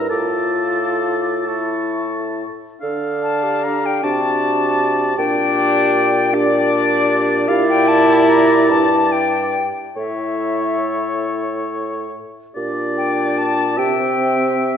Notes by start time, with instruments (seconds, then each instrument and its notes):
Already playing: bassoon G2, clarinet A#4
0.09 bassoon A2, french horn F4, clarinet A4, oboe A5, flute D6
1.47 french horn E4, oboe A5, flute C#6
2.81 bassoon D3, french horn D4, clarinet A4, oboe F5
3.23 flute A5
3.43 clarinet G4
3.64 flute A#5
3.86 flute G5
4.03 bassoon C3, french horn D4, clarinet F#4, oboe D5, flute A5
5.17 bassoon A#2, french horn D4, clarinet G4, oboe D5, flute G5
6.33 french horn D4, clarinet G4, oboe D5, flute D5
7.48 bassoon A#2, french horn E4, clarinet G4, oboe D5, flute F5
7.70 flute G5
7.88 flute A5
8.29 flute A#5
8.69 bassoon G2, flute A5
9.12 flute G5
9.96 bassoon A2, french horn E4, clarinet A4, oboe C#5, flute E5
12.55 bassoon A#2, french horn D4, clarinet G4, oboe D5
12.97 flute G5
13.38 flute A5
13.77 bassoon C3, french horn C4, clarinet G4, oboe E5, flute G5